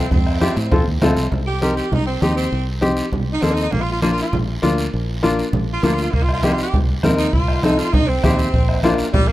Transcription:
0.11 F2 C4, bombo low, high conga, low conga, long guiro
0.27 bombo rim
0.41 C4 F4 G4, bombo rim, high conga, short guiro
0.57 A2, short guiro
0.71 F2 C4 F4 A4, bombo low, high conga, low conga, long guiro
0.87 D#2
1.02 D2 C4 F4 A4, bombo rim, high conga, low conga, short guiro
1.17 C2, short guiro
1.32 C2, high conga, low conga, long guiro
1.47 G4
1.62 C4 D#4 G4 A#4, high conga, short guiro
1.76 G4, short guiro
1.92 C2 D#4, high conga, low conga, long guiro
2.06 C4
2.21 D#2 C4 D#4 G4, high conga, short guiro
2.36 C4, short guiro
2.52 C2, high conga, long guiro
2.81 C4 D#4 G4, high conga, short guiro
2.97 short guiro
3.12 C2, high conga, low conga, long guiro
3.32 D#4
3.42 D#2 A#3 C4 D#4 A4, high conga, short guiro
3.52 D#4
3.57 short guiro
3.62 D#4
3.72 A#1 A#3, high conga, low conga, long guiro
3.81 F4
3.92 F4
4.02 A#3 D4 F4, high conga, short guiro
4.12 F4
4.18 F4, short guiro
4.32 A#1, high conga, low conga, long guiro
4.62 D2 A#3 D4 F4, high conga, short guiro
4.78 short guiro
4.93 A#1, high conga, long guiro
5.23 A#3 D4 F4, high conga, short guiro
5.39 short guiro
5.53 A#1, high conga, low conga, long guiro
5.73 F4
5.83 D2 A#3 D4 F4, high conga, short guiro
5.93 F4
5.98 short guiro
6.03 F4
6.13 C2 A#3, bombo low, high conga, long guiro
6.23 F4
6.29 bombo rim
6.33 F4
6.43 A#3 C4 D#4 G4, bombo rim, high conga, short guiro
6.53 F4
6.58 short guiro
6.62 G4
6.73 C2, bombo low, high conga, low conga, long guiro
7.03 D#2 C4 D#4 A#4, bombo rim, high conga, low conga, short guiro
7.17 D#4, short guiro
7.32 C2 F4, bombo low, high conga, long guiro
7.48 bombo rim
7.63 C4 D#4 A4, bombo rim, high conga, short guiro
7.77 F4, short guiro
7.92 C2 D#4, bombo low, high conga, low conga, long guiro
8.07 C4
8.24 D#2 C4 D#4 G4, bombo low, bombo rim, high conga, short guiro
8.39 short guiro
8.54 A#1, bombo low, high conga, long guiro
8.69 bombo rim
8.83 A#3 D4 F4, bombo rim, high conga, short guiro
8.98 short guiro
9.13 A#1 G3, bombo low, high conga, low conga, long guiro
9.28 A#3

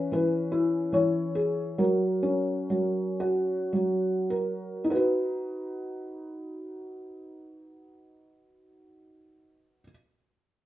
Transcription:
Already playing: E3 C#4 B4
0.12 E3 B4
0.52 E4
0.92 E3 C#5
1.35 G#4
1.78 F#3 A#4
2.23 C#4
2.70 F#3
3.20 F#4
3.73 F#3
4.30 A#4
4.84 D#4
4.90 F#4 B4
4.96 B4

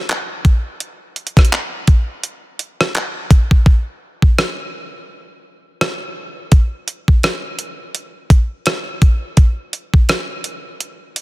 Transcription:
0.09 clap, closed hi-hat
0.45 kick, closed hi-hat
0.80 closed hi-hat
1.16 closed hi-hat
1.27 closed hi-hat
1.37 kick, cross-stick, closed hi-hat
1.45 closed hi-hat
1.52 clap, closed hi-hat
1.87 kick, closed hi-hat
2.23 closed hi-hat
2.59 closed hi-hat
2.81 cross-stick
2.95 clap, closed hi-hat
3.31 kick, closed hi-hat
3.51 kick
3.66 kick
4.22 kick
4.39 cross-stick
5.81 cross-stick
6.52 kick, closed hi-hat
6.88 closed hi-hat
7.08 kick
7.23 cross-stick, closed hi-hat
7.59 closed hi-hat
7.95 closed hi-hat
8.30 kick, closed hi-hat
8.66 cross-stick, closed hi-hat
9.02 kick, closed hi-hat
9.37 kick, closed hi-hat
9.73 closed hi-hat
9.94 kick
10.09 cross-stick, closed hi-hat
10.44 closed hi-hat
10.80 closed hi-hat
11.16 closed hi-hat

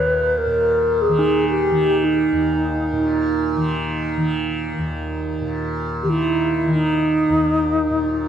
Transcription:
Already playing: D#2 A#2 D#3 B4
0.38 A#4
0.46 A#2
1.01 G#4
1.09 D#3
1.19 D#4
1.49 G4
1.71 D#3
2.04 D#4
2.32 D#2
2.93 A#2
3.56 D#3
4.17 D#3
4.78 D#2
5.41 A#2
6.03 D#3 G4
6.10 E4
6.67 D#3
6.75 D#4
7.29 D#2
7.90 A#2

